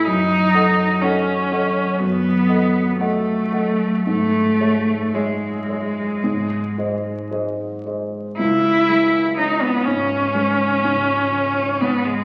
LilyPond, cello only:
\new Staff \with { instrumentName = "Cello" } { \time 4/4 \key cis \minor \tempo 4 = 60 dis'4 cis'4 b4 a4 | a4 gis2 r4 | e'4 dis'16 b16 cis'2 b16 gis16 | }